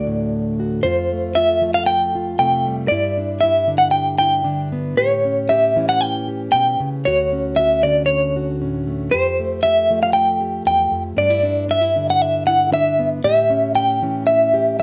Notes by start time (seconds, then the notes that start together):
Already playing: D2 D3 A3 F#4 D5
0.06 A2
0.59 F#4
0.83 F2 F4 C5
1.13 A3
1.35 F4 E5
1.61 F3 A3
1.74 F5
1.86 G5
2.15 F4
2.39 C3 A3 G5
2.65 G3
2.88 G2 E4 D5
3.18 D4
3.41 E4 E5
3.67 D3 D4
3.78 F#5
3.91 G5
4.18 E4 G5
4.44 D3 D4
4.72 B3
4.97 A2 G4 C#5
5.25 C#4
5.49 G4 E5
5.76 E3 C#4
5.89 F#5
6.01 G5
6.28 G4
6.52 B2 G5
6.80 C#3
7.05 D2 F#4 C#5
7.33 C#4
7.56 F#4 E5
7.83 D3 C#4 D5
8.06 C#5
8.36 F#4
8.61 A2 C#4
8.87 A3
9.11 F2 G4 C5
9.40 A3
9.63 G4 E5
9.90 F3 A3
10.03 F5
10.13 G5
10.41 G4
10.65 E2 G5
10.91 F2
11.17 G2 D4 D5
11.30 E4
11.43 D4
11.68 D4 E5
11.81 E4
11.96 D3 D4
12.10 F#5
12.22 E5
12.47 E4 F#5
12.71 D3 D4 E5
12.99 B3
13.24 A2 G4 E5
13.50 C#4
13.75 G4 G5
14.02 E3 C#4
14.27 E5
14.54 G4